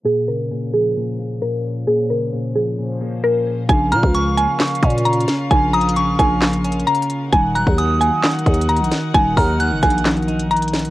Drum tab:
HH |------------------------------------------------------------------------------------------------|------------------------------------------------------------------------------------------------|x-----------x-----------x-----------x-----------x---x---x---x---x---x---x---x---x---x-----------|x-----------x---x---x---x-----------x-----------x-----x-----x---x---x---x---x---x---x-----------|
CP |------------------------------------------------------------------------------------------------|------------------------------------------------------------------------------------------------|------------------------------------------------x-----------------------------------------------|------------------------------------------------x-----------------------------------------------|
SD |------------------------------------------------------------------------------------------------|------------------------------------------------------------------------------------------------|------------------------------------------------o-----------------------------------o-----------|------------------------------------------------o-----------------------------------------------|
BD |------------------------------------------------------------------------------------------------|------------------------------------------------------------------------------------------------|o-----------------o-----------------------------------------o-----------------------------------|o-----------------------------------o-----------------------------------------------------------|

HH |x-----------x-----------x-----------x-----------x---x---x---x---x---x---x---x---x---x-----------|x-----------o-----------x-----------x---x---x---x--x--x--x--x-----x-----x--x--x--x--x--x--x-----|
CP |------------------------------------------------x-----------------------------------------------|------------------------------------------------x-----------------------------------------------|
SD |------------------------------------------------o-----------------------------------o-----------|------------------------------------------------o-----------------------------------o-----------|
BD |o-----------------o-----------------------------------------o-----------------------------------|o-----------o-----------------------o-----------------------------------------------------------|